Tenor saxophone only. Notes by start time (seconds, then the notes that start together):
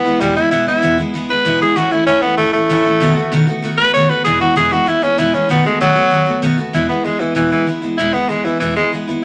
Already playing: B3
0.20 G3
0.36 E4
0.51 E4
0.68 E4
1.30 B4
1.62 G#4
1.77 F#4
1.91 E4
2.07 C#4
2.22 B3
2.37 A3
2.53 A3
3.78 B4
3.94 C#5
4.09 B4
4.24 G#4
4.41 F#4
4.56 G#4
4.72 F#4
4.88 E4
5.03 C#4
5.19 E4
5.34 C#4
5.50 B3
5.66 G#3
5.81 F#3
6.74 E4
6.89 B3
7.05 G#3
7.20 E3
7.36 E3
7.52 E3
7.97 E4
8.14 B3
8.29 G#3
8.45 E3
8.60 E3
8.76 G#3